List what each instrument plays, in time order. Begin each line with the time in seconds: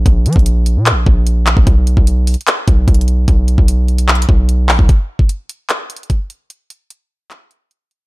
0.06 808-style bass A#1, kick, closed hi-hat
0.26 808-style bass F3, closed hi-hat
0.33 808-style bass A#1, kick, closed hi-hat
0.39 closed hi-hat
0.46 closed hi-hat
0.66 closed hi-hat
0.76 808-style bass A#2
0.86 clap, closed hi-hat
0.91 808-style bass A#1
1.06 808-style bass A#1, kick
1.27 closed hi-hat
1.47 clap, closed hi-hat
1.57 808-style bass A#1, kick
1.67 808-style bass B1, kick, closed hi-hat
1.87 closed hi-hat
1.97 808-style bass B1, kick
2.07 closed hi-hat
2.27 closed hi-hat, open hi-hat
2.34 closed hi-hat
2.41 closed hi-hat
2.47 clap, closed hi-hat
2.68 808-style bass B1, kick, closed hi-hat
2.88 808-style bass B1, kick, closed hi-hat
2.94 closed hi-hat
3.01 closed hi-hat
3.08 closed hi-hat
3.28 808-style bass B1, kick, closed hi-hat
3.48 closed hi-hat
3.58 808-style bass B1, kick
3.68 closed hi-hat
3.88 closed hi-hat
3.98 closed hi-hat
4.08 clap, closed hi-hat
4.15 closed hi-hat
4.22 closed hi-hat
4.29 808-style bass B1, kick
4.49 closed hi-hat
4.69 808-style bass A#1, clap, open hi-hat
4.79 808-style bass B1, kick
4.89 kick, closed hi-hat
5.19 kick
5.29 closed hi-hat
5.49 closed hi-hat
5.70 clap, closed hi-hat
5.90 closed hi-hat
5.97 closed hi-hat
6.03 closed hi-hat
6.10 kick, closed hi-hat
6.30 closed hi-hat
6.50 closed hi-hat
6.70 closed hi-hat
6.90 closed hi-hat
7.31 clap, closed hi-hat
7.51 closed hi-hat
7.71 closed hi-hat
7.91 closed hi-hat